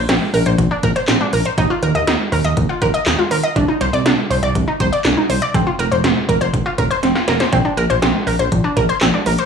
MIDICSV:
0, 0, Header, 1, 4, 480
1, 0, Start_track
1, 0, Tempo, 495868
1, 1527, Time_signature, 4, 2, 24, 8
1, 9152, End_track
2, 0, Start_track
2, 0, Title_t, "Synth arpeggio sound"
2, 0, Program_c, 0, 84
2, 87, Note_on_c, 0, 60, 81
2, 172, Note_off_c, 0, 60, 0
2, 326, Note_on_c, 0, 70, 83
2, 411, Note_off_c, 0, 70, 0
2, 446, Note_on_c, 0, 72, 81
2, 531, Note_off_c, 0, 72, 0
2, 687, Note_on_c, 0, 62, 76
2, 772, Note_off_c, 0, 62, 0
2, 808, Note_on_c, 0, 70, 83
2, 892, Note_off_c, 0, 70, 0
2, 928, Note_on_c, 0, 72, 80
2, 1012, Note_off_c, 0, 72, 0
2, 1047, Note_on_c, 0, 60, 87
2, 1131, Note_off_c, 0, 60, 0
2, 1167, Note_on_c, 0, 62, 77
2, 1251, Note_off_c, 0, 62, 0
2, 1288, Note_on_c, 0, 70, 86
2, 1372, Note_off_c, 0, 70, 0
2, 1408, Note_on_c, 0, 72, 80
2, 1492, Note_off_c, 0, 72, 0
2, 1527, Note_on_c, 0, 63, 94
2, 1611, Note_off_c, 0, 63, 0
2, 1647, Note_on_c, 0, 65, 78
2, 1731, Note_off_c, 0, 65, 0
2, 1767, Note_on_c, 0, 70, 87
2, 1851, Note_off_c, 0, 70, 0
2, 1886, Note_on_c, 0, 75, 85
2, 1971, Note_off_c, 0, 75, 0
2, 2007, Note_on_c, 0, 63, 81
2, 2091, Note_off_c, 0, 63, 0
2, 2247, Note_on_c, 0, 70, 84
2, 2331, Note_off_c, 0, 70, 0
2, 2367, Note_on_c, 0, 75, 85
2, 2452, Note_off_c, 0, 75, 0
2, 2607, Note_on_c, 0, 65, 77
2, 2691, Note_off_c, 0, 65, 0
2, 2726, Note_on_c, 0, 70, 84
2, 2811, Note_off_c, 0, 70, 0
2, 2845, Note_on_c, 0, 75, 81
2, 2930, Note_off_c, 0, 75, 0
2, 2965, Note_on_c, 0, 63, 82
2, 3050, Note_off_c, 0, 63, 0
2, 3085, Note_on_c, 0, 65, 78
2, 3170, Note_off_c, 0, 65, 0
2, 3204, Note_on_c, 0, 70, 88
2, 3290, Note_off_c, 0, 70, 0
2, 3326, Note_on_c, 0, 75, 83
2, 3410, Note_off_c, 0, 75, 0
2, 3446, Note_on_c, 0, 62, 92
2, 3531, Note_off_c, 0, 62, 0
2, 3566, Note_on_c, 0, 63, 78
2, 3651, Note_off_c, 0, 63, 0
2, 3687, Note_on_c, 0, 72, 86
2, 3771, Note_off_c, 0, 72, 0
2, 3807, Note_on_c, 0, 74, 84
2, 3891, Note_off_c, 0, 74, 0
2, 3926, Note_on_c, 0, 62, 82
2, 4011, Note_off_c, 0, 62, 0
2, 4167, Note_on_c, 0, 72, 83
2, 4251, Note_off_c, 0, 72, 0
2, 4286, Note_on_c, 0, 74, 86
2, 4371, Note_off_c, 0, 74, 0
2, 4526, Note_on_c, 0, 63, 78
2, 4611, Note_off_c, 0, 63, 0
2, 4646, Note_on_c, 0, 72, 87
2, 4731, Note_off_c, 0, 72, 0
2, 4767, Note_on_c, 0, 74, 78
2, 4851, Note_off_c, 0, 74, 0
2, 4886, Note_on_c, 0, 62, 83
2, 4970, Note_off_c, 0, 62, 0
2, 5007, Note_on_c, 0, 63, 74
2, 5091, Note_off_c, 0, 63, 0
2, 5126, Note_on_c, 0, 72, 84
2, 5211, Note_off_c, 0, 72, 0
2, 5246, Note_on_c, 0, 74, 84
2, 5331, Note_off_c, 0, 74, 0
2, 5367, Note_on_c, 0, 60, 93
2, 5451, Note_off_c, 0, 60, 0
2, 5486, Note_on_c, 0, 65, 77
2, 5571, Note_off_c, 0, 65, 0
2, 5606, Note_on_c, 0, 70, 88
2, 5691, Note_off_c, 0, 70, 0
2, 5727, Note_on_c, 0, 72, 82
2, 5811, Note_off_c, 0, 72, 0
2, 5847, Note_on_c, 0, 60, 79
2, 5931, Note_off_c, 0, 60, 0
2, 6086, Note_on_c, 0, 70, 83
2, 6170, Note_off_c, 0, 70, 0
2, 6205, Note_on_c, 0, 72, 83
2, 6290, Note_off_c, 0, 72, 0
2, 6446, Note_on_c, 0, 65, 78
2, 6531, Note_off_c, 0, 65, 0
2, 6566, Note_on_c, 0, 70, 85
2, 6651, Note_off_c, 0, 70, 0
2, 6685, Note_on_c, 0, 72, 81
2, 6770, Note_off_c, 0, 72, 0
2, 6805, Note_on_c, 0, 60, 82
2, 6890, Note_off_c, 0, 60, 0
2, 6926, Note_on_c, 0, 65, 75
2, 7011, Note_off_c, 0, 65, 0
2, 7045, Note_on_c, 0, 70, 87
2, 7130, Note_off_c, 0, 70, 0
2, 7165, Note_on_c, 0, 72, 79
2, 7250, Note_off_c, 0, 72, 0
2, 7285, Note_on_c, 0, 60, 96
2, 7370, Note_off_c, 0, 60, 0
2, 7406, Note_on_c, 0, 62, 76
2, 7490, Note_off_c, 0, 62, 0
2, 7525, Note_on_c, 0, 70, 86
2, 7610, Note_off_c, 0, 70, 0
2, 7646, Note_on_c, 0, 72, 83
2, 7731, Note_off_c, 0, 72, 0
2, 7765, Note_on_c, 0, 60, 80
2, 7850, Note_off_c, 0, 60, 0
2, 8004, Note_on_c, 0, 70, 83
2, 8090, Note_off_c, 0, 70, 0
2, 8125, Note_on_c, 0, 72, 82
2, 8210, Note_off_c, 0, 72, 0
2, 8365, Note_on_c, 0, 62, 78
2, 8450, Note_off_c, 0, 62, 0
2, 8485, Note_on_c, 0, 70, 85
2, 8570, Note_off_c, 0, 70, 0
2, 8606, Note_on_c, 0, 72, 80
2, 8691, Note_off_c, 0, 72, 0
2, 8725, Note_on_c, 0, 60, 85
2, 8810, Note_off_c, 0, 60, 0
2, 8845, Note_on_c, 0, 62, 73
2, 8930, Note_off_c, 0, 62, 0
2, 8965, Note_on_c, 0, 70, 86
2, 9050, Note_off_c, 0, 70, 0
2, 9086, Note_on_c, 0, 72, 82
2, 9152, Note_off_c, 0, 72, 0
2, 9152, End_track
3, 0, Start_track
3, 0, Title_t, "Analog synth bass"
3, 0, Program_c, 1, 38
3, 86, Note_on_c, 1, 34, 98
3, 184, Note_off_c, 1, 34, 0
3, 326, Note_on_c, 1, 34, 108
3, 424, Note_off_c, 1, 34, 0
3, 448, Note_on_c, 1, 34, 104
3, 545, Note_off_c, 1, 34, 0
3, 566, Note_on_c, 1, 34, 108
3, 665, Note_off_c, 1, 34, 0
3, 807, Note_on_c, 1, 34, 114
3, 905, Note_off_c, 1, 34, 0
3, 1047, Note_on_c, 1, 34, 103
3, 1145, Note_off_c, 1, 34, 0
3, 1287, Note_on_c, 1, 34, 98
3, 1385, Note_off_c, 1, 34, 0
3, 1526, Note_on_c, 1, 39, 116
3, 1624, Note_off_c, 1, 39, 0
3, 1767, Note_on_c, 1, 39, 101
3, 1865, Note_off_c, 1, 39, 0
3, 1887, Note_on_c, 1, 39, 101
3, 1985, Note_off_c, 1, 39, 0
3, 2007, Note_on_c, 1, 39, 96
3, 2105, Note_off_c, 1, 39, 0
3, 2248, Note_on_c, 1, 39, 99
3, 2346, Note_off_c, 1, 39, 0
3, 2367, Note_on_c, 1, 39, 102
3, 2465, Note_off_c, 1, 39, 0
3, 2487, Note_on_c, 1, 39, 104
3, 2585, Note_off_c, 1, 39, 0
3, 2728, Note_on_c, 1, 39, 100
3, 2825, Note_off_c, 1, 39, 0
3, 2967, Note_on_c, 1, 39, 101
3, 3065, Note_off_c, 1, 39, 0
3, 3208, Note_on_c, 1, 39, 99
3, 3305, Note_off_c, 1, 39, 0
3, 3447, Note_on_c, 1, 36, 112
3, 3545, Note_off_c, 1, 36, 0
3, 3688, Note_on_c, 1, 36, 97
3, 3786, Note_off_c, 1, 36, 0
3, 3807, Note_on_c, 1, 36, 97
3, 3905, Note_off_c, 1, 36, 0
3, 3926, Note_on_c, 1, 36, 90
3, 4024, Note_off_c, 1, 36, 0
3, 4165, Note_on_c, 1, 36, 106
3, 4264, Note_off_c, 1, 36, 0
3, 4285, Note_on_c, 1, 36, 103
3, 4384, Note_off_c, 1, 36, 0
3, 4407, Note_on_c, 1, 36, 105
3, 4505, Note_off_c, 1, 36, 0
3, 4648, Note_on_c, 1, 36, 100
3, 4746, Note_off_c, 1, 36, 0
3, 4886, Note_on_c, 1, 36, 101
3, 4985, Note_off_c, 1, 36, 0
3, 5127, Note_on_c, 1, 36, 93
3, 5225, Note_off_c, 1, 36, 0
3, 5367, Note_on_c, 1, 29, 115
3, 5465, Note_off_c, 1, 29, 0
3, 5607, Note_on_c, 1, 29, 100
3, 5705, Note_off_c, 1, 29, 0
3, 5726, Note_on_c, 1, 29, 96
3, 5825, Note_off_c, 1, 29, 0
3, 5847, Note_on_c, 1, 29, 95
3, 5945, Note_off_c, 1, 29, 0
3, 6087, Note_on_c, 1, 29, 99
3, 6185, Note_off_c, 1, 29, 0
3, 6207, Note_on_c, 1, 29, 97
3, 6305, Note_off_c, 1, 29, 0
3, 6328, Note_on_c, 1, 29, 108
3, 6425, Note_off_c, 1, 29, 0
3, 6567, Note_on_c, 1, 29, 102
3, 6665, Note_off_c, 1, 29, 0
3, 6806, Note_on_c, 1, 29, 102
3, 6904, Note_off_c, 1, 29, 0
3, 7045, Note_on_c, 1, 29, 97
3, 7144, Note_off_c, 1, 29, 0
3, 7286, Note_on_c, 1, 34, 121
3, 7384, Note_off_c, 1, 34, 0
3, 7526, Note_on_c, 1, 34, 108
3, 7624, Note_off_c, 1, 34, 0
3, 7646, Note_on_c, 1, 34, 92
3, 7744, Note_off_c, 1, 34, 0
3, 7766, Note_on_c, 1, 34, 100
3, 7864, Note_off_c, 1, 34, 0
3, 8006, Note_on_c, 1, 34, 110
3, 8104, Note_off_c, 1, 34, 0
3, 8125, Note_on_c, 1, 34, 99
3, 8224, Note_off_c, 1, 34, 0
3, 8247, Note_on_c, 1, 34, 111
3, 8345, Note_off_c, 1, 34, 0
3, 8487, Note_on_c, 1, 34, 116
3, 8585, Note_off_c, 1, 34, 0
3, 8726, Note_on_c, 1, 34, 101
3, 8824, Note_off_c, 1, 34, 0
3, 8967, Note_on_c, 1, 34, 99
3, 9065, Note_off_c, 1, 34, 0
3, 9152, End_track
4, 0, Start_track
4, 0, Title_t, "Drums"
4, 86, Note_on_c, 9, 38, 111
4, 86, Note_on_c, 9, 42, 78
4, 182, Note_off_c, 9, 42, 0
4, 183, Note_off_c, 9, 38, 0
4, 327, Note_on_c, 9, 46, 58
4, 424, Note_off_c, 9, 46, 0
4, 445, Note_on_c, 9, 42, 53
4, 541, Note_off_c, 9, 42, 0
4, 566, Note_on_c, 9, 36, 100
4, 566, Note_on_c, 9, 42, 83
4, 663, Note_off_c, 9, 36, 0
4, 663, Note_off_c, 9, 42, 0
4, 805, Note_on_c, 9, 42, 72
4, 806, Note_on_c, 9, 36, 90
4, 902, Note_off_c, 9, 42, 0
4, 903, Note_off_c, 9, 36, 0
4, 929, Note_on_c, 9, 42, 55
4, 1025, Note_off_c, 9, 42, 0
4, 1044, Note_on_c, 9, 38, 108
4, 1044, Note_on_c, 9, 39, 87
4, 1046, Note_on_c, 9, 42, 74
4, 1140, Note_off_c, 9, 38, 0
4, 1140, Note_off_c, 9, 39, 0
4, 1143, Note_off_c, 9, 42, 0
4, 1285, Note_on_c, 9, 46, 82
4, 1382, Note_off_c, 9, 46, 0
4, 1404, Note_on_c, 9, 42, 54
4, 1501, Note_off_c, 9, 42, 0
4, 1526, Note_on_c, 9, 36, 123
4, 1526, Note_on_c, 9, 42, 74
4, 1623, Note_off_c, 9, 36, 0
4, 1623, Note_off_c, 9, 42, 0
4, 1767, Note_on_c, 9, 42, 67
4, 1863, Note_off_c, 9, 42, 0
4, 1889, Note_on_c, 9, 42, 47
4, 1986, Note_off_c, 9, 42, 0
4, 2007, Note_on_c, 9, 38, 116
4, 2007, Note_on_c, 9, 42, 78
4, 2104, Note_off_c, 9, 38, 0
4, 2104, Note_off_c, 9, 42, 0
4, 2249, Note_on_c, 9, 46, 61
4, 2346, Note_off_c, 9, 46, 0
4, 2366, Note_on_c, 9, 42, 52
4, 2463, Note_off_c, 9, 42, 0
4, 2487, Note_on_c, 9, 36, 104
4, 2487, Note_on_c, 9, 42, 84
4, 2584, Note_off_c, 9, 36, 0
4, 2584, Note_off_c, 9, 42, 0
4, 2727, Note_on_c, 9, 36, 88
4, 2727, Note_on_c, 9, 42, 74
4, 2824, Note_off_c, 9, 36, 0
4, 2824, Note_off_c, 9, 42, 0
4, 2850, Note_on_c, 9, 42, 55
4, 2946, Note_off_c, 9, 42, 0
4, 2965, Note_on_c, 9, 38, 107
4, 2965, Note_on_c, 9, 39, 90
4, 2967, Note_on_c, 9, 42, 71
4, 3062, Note_off_c, 9, 38, 0
4, 3062, Note_off_c, 9, 39, 0
4, 3064, Note_off_c, 9, 42, 0
4, 3205, Note_on_c, 9, 46, 80
4, 3302, Note_off_c, 9, 46, 0
4, 3325, Note_on_c, 9, 42, 53
4, 3421, Note_off_c, 9, 42, 0
4, 3447, Note_on_c, 9, 36, 127
4, 3448, Note_on_c, 9, 42, 73
4, 3544, Note_off_c, 9, 36, 0
4, 3544, Note_off_c, 9, 42, 0
4, 3687, Note_on_c, 9, 42, 71
4, 3784, Note_off_c, 9, 42, 0
4, 3809, Note_on_c, 9, 42, 47
4, 3906, Note_off_c, 9, 42, 0
4, 3928, Note_on_c, 9, 38, 120
4, 3928, Note_on_c, 9, 42, 78
4, 4024, Note_off_c, 9, 42, 0
4, 4025, Note_off_c, 9, 38, 0
4, 4169, Note_on_c, 9, 46, 58
4, 4266, Note_off_c, 9, 46, 0
4, 4286, Note_on_c, 9, 42, 55
4, 4383, Note_off_c, 9, 42, 0
4, 4407, Note_on_c, 9, 36, 104
4, 4408, Note_on_c, 9, 42, 81
4, 4504, Note_off_c, 9, 36, 0
4, 4504, Note_off_c, 9, 42, 0
4, 4647, Note_on_c, 9, 42, 74
4, 4648, Note_on_c, 9, 36, 90
4, 4743, Note_off_c, 9, 42, 0
4, 4744, Note_off_c, 9, 36, 0
4, 4770, Note_on_c, 9, 42, 54
4, 4867, Note_off_c, 9, 42, 0
4, 4885, Note_on_c, 9, 38, 109
4, 4885, Note_on_c, 9, 39, 91
4, 4887, Note_on_c, 9, 42, 72
4, 4982, Note_off_c, 9, 38, 0
4, 4982, Note_off_c, 9, 39, 0
4, 4984, Note_off_c, 9, 42, 0
4, 5127, Note_on_c, 9, 46, 82
4, 5224, Note_off_c, 9, 46, 0
4, 5245, Note_on_c, 9, 42, 54
4, 5342, Note_off_c, 9, 42, 0
4, 5367, Note_on_c, 9, 36, 127
4, 5368, Note_on_c, 9, 42, 75
4, 5464, Note_off_c, 9, 36, 0
4, 5464, Note_off_c, 9, 42, 0
4, 5609, Note_on_c, 9, 42, 70
4, 5706, Note_off_c, 9, 42, 0
4, 5731, Note_on_c, 9, 42, 48
4, 5828, Note_off_c, 9, 42, 0
4, 5848, Note_on_c, 9, 38, 116
4, 5848, Note_on_c, 9, 42, 78
4, 5945, Note_off_c, 9, 38, 0
4, 5945, Note_off_c, 9, 42, 0
4, 6087, Note_on_c, 9, 36, 95
4, 6090, Note_on_c, 9, 42, 87
4, 6184, Note_off_c, 9, 36, 0
4, 6186, Note_off_c, 9, 42, 0
4, 6208, Note_on_c, 9, 42, 55
4, 6305, Note_off_c, 9, 42, 0
4, 6327, Note_on_c, 9, 36, 101
4, 6329, Note_on_c, 9, 42, 84
4, 6424, Note_off_c, 9, 36, 0
4, 6425, Note_off_c, 9, 42, 0
4, 6567, Note_on_c, 9, 42, 70
4, 6568, Note_on_c, 9, 36, 90
4, 6664, Note_off_c, 9, 42, 0
4, 6665, Note_off_c, 9, 36, 0
4, 6691, Note_on_c, 9, 42, 53
4, 6788, Note_off_c, 9, 42, 0
4, 6807, Note_on_c, 9, 38, 59
4, 6807, Note_on_c, 9, 42, 70
4, 6904, Note_off_c, 9, 38, 0
4, 6904, Note_off_c, 9, 42, 0
4, 6927, Note_on_c, 9, 38, 66
4, 7024, Note_off_c, 9, 38, 0
4, 7046, Note_on_c, 9, 42, 81
4, 7047, Note_on_c, 9, 38, 93
4, 7142, Note_off_c, 9, 42, 0
4, 7144, Note_off_c, 9, 38, 0
4, 7164, Note_on_c, 9, 42, 52
4, 7167, Note_on_c, 9, 38, 95
4, 7261, Note_off_c, 9, 42, 0
4, 7264, Note_off_c, 9, 38, 0
4, 7286, Note_on_c, 9, 36, 124
4, 7286, Note_on_c, 9, 42, 76
4, 7383, Note_off_c, 9, 36, 0
4, 7383, Note_off_c, 9, 42, 0
4, 7528, Note_on_c, 9, 42, 70
4, 7624, Note_off_c, 9, 42, 0
4, 7650, Note_on_c, 9, 42, 48
4, 7747, Note_off_c, 9, 42, 0
4, 7768, Note_on_c, 9, 42, 82
4, 7769, Note_on_c, 9, 38, 115
4, 7865, Note_off_c, 9, 38, 0
4, 7865, Note_off_c, 9, 42, 0
4, 8009, Note_on_c, 9, 46, 60
4, 8106, Note_off_c, 9, 46, 0
4, 8125, Note_on_c, 9, 42, 54
4, 8222, Note_off_c, 9, 42, 0
4, 8247, Note_on_c, 9, 36, 103
4, 8247, Note_on_c, 9, 42, 85
4, 8344, Note_off_c, 9, 36, 0
4, 8344, Note_off_c, 9, 42, 0
4, 8486, Note_on_c, 9, 42, 71
4, 8487, Note_on_c, 9, 36, 92
4, 8583, Note_off_c, 9, 42, 0
4, 8584, Note_off_c, 9, 36, 0
4, 8609, Note_on_c, 9, 42, 56
4, 8706, Note_off_c, 9, 42, 0
4, 8723, Note_on_c, 9, 38, 110
4, 8723, Note_on_c, 9, 39, 86
4, 8725, Note_on_c, 9, 42, 74
4, 8820, Note_off_c, 9, 38, 0
4, 8820, Note_off_c, 9, 39, 0
4, 8822, Note_off_c, 9, 42, 0
4, 8964, Note_on_c, 9, 46, 78
4, 9060, Note_off_c, 9, 46, 0
4, 9083, Note_on_c, 9, 42, 52
4, 9152, Note_off_c, 9, 42, 0
4, 9152, End_track
0, 0, End_of_file